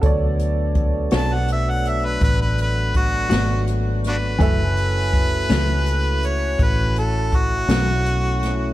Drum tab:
HH |xxxxxxxxxxxx|xxxxxxxxxxxx|
SD |---o-----o-o|---o-----o-o|
BD |o-o---o-o---|o-o---o-o---|